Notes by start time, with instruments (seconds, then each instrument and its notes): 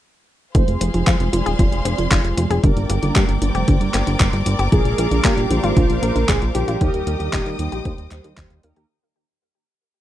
0.55 analog synth bass F1, synth arpeggio sound F3, analog polysynth G#3 C4 F4 C5, string section G#4 C5 F5 C6, kick, closed hi-hat
0.68 analog synth bass F1, closed hi-hat
0.81 analog synth bass F1, synth arpeggio sound C4, closed hi-hat
0.94 analog synth bass F1, synth arpeggio sound F3, analog polysynth G#3 C4 F4 C5, closed hi-hat
1.07 analog synth bass F2, synth arpeggio sound F4, kick, clap, closed hi-hat
1.20 analog synth bass F1, closed hi-hat
1.33 analog synth bass F1, synth arpeggio sound F3, analog polysynth G#3 C4 F4 D5, closed hi-hat
1.46 analog synth bass D#1, synth arpeggio sound G#4, closed hi-hat
1.59 analog synth bass F1, synth arpeggio sound F3, kick, closed hi-hat
1.72 analog synth bass F1, closed hi-hat
1.85 analog synth bass F1, synth arpeggio sound C4, closed hi-hat
1.98 analog synth bass F1, synth arpeggio sound F3, closed hi-hat
2.11 analog synth bass F1, synth arpeggio sound F4, kick, clap, closed hi-hat
2.24 analog synth bass F1, closed hi-hat
2.37 analog synth bass F1, synth arpeggio sound F3, closed hi-hat
2.50 analog synth bass F1, synth arpeggio sound G#4, closed hi-hat
2.64 analog synth bass G1, synth arpeggio sound D3, analog polysynth G3 A#3 D4 A#4, string section A#4 D5 G5 D6, kick, closed hi-hat
2.77 analog synth bass G1, closed hi-hat
2.89 analog synth bass G1, synth arpeggio sound A#3, closed hi-hat
3.03 analog synth bass G1, synth arpeggio sound D3, analog polysynth G3 A#3 D4 A#4, closed hi-hat
3.16 analog synth bass G2, synth arpeggio sound D4, kick, clap, closed hi-hat
3.29 analog synth bass G1, closed hi-hat
3.42 analog synth bass G1, synth arpeggio sound D3, analog polysynth G3 A#3 D4 C5, closed hi-hat
3.55 analog synth bass F1, synth arpeggio sound G4, closed hi-hat
3.68 analog synth bass G1, synth arpeggio sound D3, kick, closed hi-hat
3.81 analog synth bass G1, closed hi-hat
3.94 analog synth bass G1, synth arpeggio sound A#3, clap, closed hi-hat
4.07 analog synth bass G1, synth arpeggio sound D3, closed hi-hat
4.20 analog synth bass G1, synth arpeggio sound D4, kick, clap, closed hi-hat
4.33 analog synth bass G1, closed hi-hat
4.46 analog synth bass G1, synth arpeggio sound D3, closed hi-hat
4.59 analog synth bass G1, synth arpeggio sound G4, closed hi-hat
4.72 analog synth bass A#1, synth arpeggio sound D3, analog polysynth F3 A#3 D4 A#4, analog synth lead G#4, string section F5, kick, closed hi-hat
4.85 analog synth bass A#1, closed hi-hat
4.98 analog synth bass A#1, synth arpeggio sound A#3, closed hi-hat
5.11 analog synth bass A#1, synth arpeggio sound D3, analog polysynth F3 A#3 D4 A#4, closed hi-hat
5.24 analog synth bass A#2, synth arpeggio sound D4, analog synth lead G4, kick, clap, closed hi-hat
5.37 analog synth bass A#1, closed hi-hat
5.50 analog synth bass A#1, synth arpeggio sound D3, analog polysynth F3 A#3 D4 C5, closed hi-hat
5.64 analog synth bass G#1, synth arpeggio sound F4, closed hi-hat
5.76 analog synth bass A#1, synth arpeggio sound D3, analog synth lead F4, kick, closed hi-hat
5.90 analog synth bass A#1, closed hi-hat
6.03 analog synth bass A#1, synth arpeggio sound A#3, analog synth lead A#4, closed hi-hat
6.16 analog synth bass A#1, synth arpeggio sound D3, closed hi-hat
6.29 analog synth bass A#1, synth arpeggio sound D4, analog synth lead G#4, kick, clap, closed hi-hat
6.42 analog synth bass A#1, closed hi-hat
6.55 analog synth bass A#1, synth arpeggio sound D3, analog synth lead G4, closed hi-hat
6.68 analog synth bass A#1, synth arpeggio sound F4, closed hi-hat
6.81 analog synth bass D#2, synth arpeggio sound D#3, analog polysynth G3 A#3 D#4 A#4, string section D#5 G5 D#6, kick, closed hi-hat
6.94 analog synth bass D#2, closed hi-hat
7.07 analog synth bass D#2, synth arpeggio sound A#3, closed hi-hat
7.20 analog synth bass D#2, synth arpeggio sound D#3, analog polysynth G3 A#3 D#4 A#4, closed hi-hat
7.33 analog synth bass D#1, synth arpeggio sound D#4, kick, clap, closed hi-hat
7.46 analog synth bass D#2, closed hi-hat
7.59 analog synth bass D#2, synth arpeggio sound D#3, analog polysynth G3 A#3 D#4 C5, closed hi-hat
7.72 analog synth bass A#1, synth arpeggio sound G4, closed hi-hat
7.85 analog synth bass D#2, synth arpeggio sound D#3, kick, closed hi-hat
7.98 analog synth bass D#2, closed hi-hat
8.11 analog synth bass D#2, synth arpeggio sound D#4, clap, closed hi-hat
8.24 analog synth bass D#2, synth arpeggio sound G3, closed hi-hat
8.37 analog synth bass D#2, synth arpeggio sound D#4, kick, clap, closed hi-hat
8.50 analog synth bass D#2, closed hi-hat
8.63 analog synth bass D#2, analog polysynth G3 A#3 D#4 A#4, synth arpeggio sound A#3, closed hi-hat
8.76 analog synth bass D#2, synth arpeggio sound G4, closed hi-hat